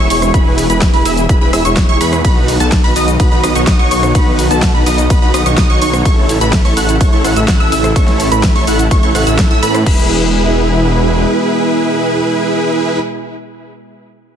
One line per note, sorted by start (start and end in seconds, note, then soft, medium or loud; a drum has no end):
0.00 2.21 B2 medium
0.00 2.21 G#3 medium
0.00 2.20 E4 medium
0.10 0.32 E1 loud
0.10 0.31 E4 loud
0.10 0.31 G#4 medium
0.10 0.31 C#5 loud
0.10 0.31 C#6 loud
0.10 open hi-hat loud
0.10 shaker medium
0.22 cross-stick medium
0.22 closed hi-hat medium
0.22 shaker soft
0.34 0.67 E1 loud
0.34 0.67 E4 medium
0.34 0.67 B4 loud
0.34 0.67 B5 loud
0.34 kick loud
0.34 closed hi-hat medium
0.34 shaker soft
0.58 open hi-hat loud
0.58 shaker medium
0.70 0.91 E1 loud
0.70 0.91 E4 medium
0.70 0.91 G#4 medium
0.70 0.91 B4 loud
0.70 0.91 B5 medium
0.70 closed hi-hat medium
0.70 shaker soft
0.81 kick loud
0.81 snare loud
0.81 closed hi-hat medium
0.81 shaker soft
0.94 1.03 E1 loud
0.94 1.03 E4 medium
0.94 1.03 G#4 medium
0.94 1.03 B4 medium
0.94 1.03 B5 medium
0.94 open hi-hat medium
1.05 1.27 E1 loud
1.05 1.25 E4 medium
1.05 1.25 G#4 medium
1.05 1.25 E5 loud
1.05 1.25 E6 loud
1.05 open hi-hat loud
1.05 shaker medium
1.17 closed hi-hat medium
1.17 shaker soft
1.29 1.39 E1 loud
1.29 1.38 E4 medium
1.29 1.38 B4 medium
1.29 1.38 B5 medium
1.29 kick loud
1.29 closed hi-hat medium
1.29 shaker soft
1.41 1.51 E1 loud
1.41 1.51 E4 medium
1.41 1.51 G#4 medium
1.41 1.51 B4 medium
1.41 1.51 B5 medium
1.53 1.63 E1 loud
1.53 1.63 E4 medium
1.53 1.63 G#4 medium
1.53 1.63 E5 medium
1.53 1.63 E6 loud
1.53 cross-stick medium
1.53 open hi-hat loud
1.53 shaker medium
1.65 1.86 E1 loud
1.65 1.86 E4 medium
1.65 1.86 G#4 medium
1.65 1.86 C#5 medium
1.65 1.86 C#6 medium
1.65 closed hi-hat medium
1.65 shaker soft
1.77 kick loud
1.77 snare loud
1.77 closed hi-hat medium
1.77 shaker soft
1.89 1.98 E1 loud
1.89 1.98 E4 loud
1.89 1.98 G#4 medium
1.89 1.98 C#5 loud
1.89 1.98 C#6 loud
1.89 closed hi-hat soft
2.01 2.22 E2 loud
2.01 2.22 E4 medium
2.01 2.22 G#4 medium
2.01 2.22 B4 loud
2.01 2.22 B5 loud
2.01 open hi-hat loud
2.01 shaker medium
2.13 cross-stick medium
2.13 closed hi-hat medium
2.13 shaker soft
2.24 2.58 B1 loud
2.24 6.02 D#3 medium
2.24 6.02 B3 medium
2.24 2.57 D#4 medium
2.24 2.57 F#4 medium
2.24 6.02 F#4 medium
2.24 2.57 B4 loud
2.24 2.57 B5 loud
2.24 kick loud
2.24 closed hi-hat medium
2.24 ride medium
2.24 shaker soft
2.48 open hi-hat loud
2.48 shaker medium
2.60 2.82 B1 loud
2.60 2.81 D#4 medium
2.60 2.81 F#4 medium
2.60 2.81 A4 loud
2.60 2.81 A5 medium
2.60 closed hi-hat medium
2.60 shaker soft
2.72 kick loud
2.72 snare loud
2.72 closed hi-hat medium
2.72 ride medium
2.72 shaker soft
2.84 2.94 B1 loud
2.84 2.93 D#4 medium
2.84 2.93 F#4 medium
2.84 2.93 B4 medium
2.84 2.93 B5 loud
2.84 open hi-hat medium
2.96 3.17 B1 loud
2.96 3.15 D#4 medium
2.96 3.15 F#4 medium
2.96 3.15 D#5 loud
2.96 3.15 D#6 medium
2.96 open hi-hat loud
2.96 shaker medium
3.08 closed hi-hat medium
3.08 shaker soft
3.20 3.29 B1 loud
3.20 3.29 D#4 medium
3.20 3.29 F#4 medium
3.20 3.29 B4 medium
3.20 3.29 B5 medium
3.20 kick loud
3.20 closed hi-hat medium
3.20 ride medium
3.20 shaker soft
3.32 3.41 B1 loud
3.32 3.41 D#4 medium
3.32 3.41 F#4 medium
3.32 3.41 B4 loud
3.32 3.41 B5 medium
3.44 3.53 B1 loud
3.44 3.53 D#4 medium
3.44 3.53 F#4 medium
3.44 3.53 D#5 medium
3.44 3.53 D#6 medium
3.44 cross-stick medium
3.44 open hi-hat loud
3.44 shaker medium
3.55 3.65 B1 loud
3.55 3.64 D#4 medium
3.55 3.64 F#4 medium
3.55 3.64 C#5 medium
3.55 3.65 C#6 medium
3.55 closed hi-hat soft
3.55 shaker soft
3.67 3.77 B1 loud
3.67 3.77 D#4 loud
3.67 3.77 F#4 loud
3.67 3.77 D#5 loud
3.67 3.77 D#6 loud
3.67 kick loud
3.67 snare loud
3.67 closed hi-hat medium
3.67 ride medium
3.67 shaker soft
3.79 3.89 B1 loud
3.79 3.89 D#4 loud
3.79 3.89 F#4 medium
3.79 3.89 C#5 loud
3.79 3.89 C#6 loud
3.79 closed hi-hat soft
3.91 4.13 B1 loud
3.91 4.12 D#4 loud
3.91 4.12 F#4 medium
3.91 4.12 C#5 loud
3.91 4.12 C#6 loud
3.91 open hi-hat loud
3.91 shaker medium
4.03 cross-stick medium
4.03 closed hi-hat soft
4.03 shaker soft
4.15 4.48 B1 loud
4.15 4.48 D#4 medium
4.15 4.48 F#4 medium
4.15 4.48 B4 loud
4.15 4.48 B5 loud
4.15 kick loud
4.15 closed hi-hat medium
4.15 ride medium
4.15 shaker soft
4.39 open hi-hat loud
4.39 shaker medium
4.51 4.72 B1 loud
4.51 4.72 D#4 medium
4.51 4.72 F#4 medium
4.51 4.72 A4 medium
4.51 4.72 A5 loud
4.51 closed hi-hat medium
4.51 shaker soft
4.62 kick loud
4.62 snare loud
4.62 closed hi-hat medium
4.62 ride medium
4.62 shaker soft
4.74 4.84 B1 loud
4.74 4.84 D#4 medium
4.74 4.84 F#4 medium
4.74 4.84 B4 medium
4.74 4.84 B5 medium
4.86 5.08 B1 loud
4.86 5.05 D#4 loud
4.86 5.05 F#4 medium
4.86 5.05 D#5 loud
4.86 5.05 D#6 loud
4.86 open hi-hat loud
4.86 shaker medium
4.98 closed hi-hat soft
4.98 shaker soft
5.10 5.20 B1 loud
5.10 5.19 D#4 medium
5.10 5.19 F#4 medium
5.10 5.19 B4 medium
5.10 5.19 B5 medium
5.10 kick loud
5.10 closed hi-hat medium
5.10 ride medium
5.10 shaker soft
5.22 5.32 B1 loud
5.22 5.32 D#4 medium
5.22 5.32 F#4 medium
5.22 5.32 B4 medium
5.22 5.32 B5 medium
5.34 5.44 B1 loud
5.34 5.43 D#4 medium
5.34 5.43 F#4 medium
5.34 5.43 D#5 medium
5.34 5.43 D#6 medium
5.34 cross-stick medium
5.34 open hi-hat loud
5.34 shaker medium
5.46 5.55 B1 loud
5.46 5.55 D#4 medium
5.46 5.55 F#4 medium
5.46 5.55 C#5 medium
5.46 5.55 C#6 medium
5.46 closed hi-hat medium
5.46 shaker soft
5.58 5.67 B1 loud
5.58 5.68 D#6 loud
5.58 kick loud
5.58 snare loud
5.58 closed hi-hat medium
5.58 ride medium
5.58 shaker soft
5.70 5.79 B1 loud
5.70 5.80 D#4 loud
5.70 5.80 F#4 medium
5.70 5.80 C#5 loud
5.70 5.80 C#6 loud
5.70 closed hi-hat soft
5.82 6.03 B1 loud
5.82 6.03 D#4 medium
5.82 6.03 F#4 medium
5.82 6.03 C#5 loud
5.82 6.03 C#6 loud
5.82 open hi-hat loud
5.82 shaker medium
5.94 cross-stick medium
5.94 closed hi-hat medium
5.94 shaker soft
6.05 6.39 A1 loud
6.05 9.83 C#3 medium
6.05 9.83 A3 medium
6.05 6.38 E4 medium
6.05 9.83 E4 medium
6.05 6.38 A4 medium
6.05 6.38 C#5 loud
6.05 6.38 C#6 loud
6.05 kick loud
6.05 closed hi-hat medium
6.05 ride medium
6.05 shaker soft
6.29 open hi-hat loud
6.29 shaker medium
6.41 6.63 A1 loud
6.41 6.62 E4 medium
6.41 6.62 A4 medium
6.41 6.62 B4 loud
6.41 6.62 B5 medium
6.41 closed hi-hat medium
6.41 shaker soft
6.53 kick loud
6.53 snare loud
6.53 closed hi-hat medium
6.53 ride medium
6.53 shaker soft
6.65 6.74 A1 loud
6.65 6.74 E4 medium
6.65 6.74 A4 medium
6.65 6.74 C#5 medium
6.65 6.74 C#6 loud
6.65 open hi-hat medium
6.77 6.98 A1 loud
6.77 6.96 E4 loud
6.77 6.96 A4 medium
6.77 6.96 F#5 loud
6.77 6.96 F#6 loud
6.77 open hi-hat loud
6.77 shaker medium
6.89 closed hi-hat medium
6.89 shaker soft
7.01 7.10 A1 loud
7.01 7.10 E4 medium
7.01 7.10 A4 medium
7.01 7.10 C#5 medium
7.01 7.10 C#6 medium
7.01 kick loud
7.01 closed hi-hat medium
7.01 ride medium
7.01 shaker soft
7.13 7.22 A1 loud
7.13 7.22 E4 medium
7.13 7.22 A4 medium
7.13 7.22 C#5 loud
7.13 7.22 C#6 medium
7.24 7.34 A1 loud
7.24 7.34 E4 medium
7.24 7.34 A4 medium
7.24 7.34 F#5 medium
7.24 7.34 F#6 medium
7.24 cross-stick medium
7.24 open hi-hat loud
7.24 shaker medium
7.36 7.46 A1 loud
7.36 7.45 E4 medium
7.36 7.46 A4 medium
7.36 7.45 E5 medium
7.36 7.45 E6 medium
7.36 closed hi-hat medium
7.36 shaker soft
7.48 7.58 A1 medium
7.48 7.58 E4 loud
7.48 7.58 A4 loud
7.48 7.58 F#5 loud
7.48 7.58 F#6 loud
7.48 kick loud
7.48 snare loud
7.48 closed hi-hat medium
7.48 ride medium
7.48 shaker soft
7.60 7.70 A1 loud
7.60 7.70 E4 loud
7.60 7.70 A4 medium
7.60 7.70 E5 loud
7.60 7.70 E6 loud
7.60 closed hi-hat soft
7.72 7.94 A1 loud
7.72 7.93 E4 loud
7.72 7.93 A4 medium
7.72 7.93 E5 loud
7.72 7.93 E6 loud
7.72 open hi-hat loud
7.72 shaker medium
7.84 cross-stick medium
7.84 closed hi-hat medium
7.84 shaker soft
7.96 8.29 A1 loud
7.96 8.29 E4 medium
7.96 8.29 A4 medium
7.96 8.29 C#5 loud
7.96 8.29 C#6 loud
7.96 kick loud
7.96 closed hi-hat medium
7.96 ride medium
7.96 shaker soft
8.08 snare soft
8.08 closed hi-hat soft
8.20 open hi-hat loud
8.20 shaker medium
8.32 8.53 A1 loud
8.32 8.53 E4 medium
8.32 8.53 A4 medium
8.32 8.53 B4 loud
8.32 8.53 B5 medium
8.32 closed hi-hat medium
8.32 shaker soft
8.43 kick loud
8.43 snare loud
8.43 closed hi-hat medium
8.43 ride medium
8.43 shaker soft
8.55 8.65 A1 loud
8.55 8.64 E4 medium
8.55 8.64 A4 medium
8.55 8.64 C#5 loud
8.55 8.65 C#6 loud
8.55 open hi-hat medium
8.67 8.89 A1 medium
8.67 8.86 E4 loud
8.67 8.86 A4 medium
8.67 8.86 F#5 loud
8.67 8.86 F#6 medium
8.67 open hi-hat loud
8.67 shaker medium
8.79 closed hi-hat medium
8.79 shaker soft
8.91 9.01 A1 loud
8.91 9.00 E4 medium
8.91 9.00 A4 medium
8.91 9.00 C#5 medium
8.91 9.00 C#6 medium
8.91 kick loud
8.91 closed hi-hat medium
8.91 ride medium
8.91 shaker soft
9.03 9.13 A1 loud
9.03 9.13 E4 medium
9.03 9.13 A4 medium
9.03 9.13 C#5 medium
9.03 9.13 C#6 medium
9.03 closed hi-hat soft
9.15 9.24 A1 loud
9.15 9.25 E4 medium
9.15 9.25 A4 medium
9.15 9.25 F#5 medium
9.15 9.25 F#6 medium
9.15 cross-stick medium
9.15 open hi-hat loud
9.15 shaker medium
9.27 9.48 A1 loud
9.27 9.48 E4 medium
9.27 9.48 A4 medium
9.27 9.48 E5 medium
9.27 9.48 E6 medium
9.27 closed hi-hat medium
9.27 shaker soft
9.39 kick loud
9.39 snare loud
9.39 closed hi-hat medium
9.39 ride medium
9.39 shaker soft
9.51 9.60 A2 loud
9.51 9.60 E4 loud
9.51 9.60 A4 medium
9.51 9.60 E5 loud
9.51 9.60 E6 loud
9.51 closed hi-hat soft
9.62 9.84 A2 loud
9.62 9.84 E4 loud
9.62 9.84 A4 medium
9.62 9.84 B4 loud
9.62 9.84 B5 loud
9.62 open hi-hat loud
9.62 shaker medium
9.75 cross-stick medium
9.75 closed hi-hat medium
9.75 shaker soft
9.86 11.25 E1 loud
9.86 12.99 B2 medium
9.86 12.99 G#3 medium
9.86 12.99 E4 medium
9.86 12.99 G#4 medium
9.86 12.99 B4 loud
9.86 12.99 B5 medium
9.86 kick loud
9.86 crash medium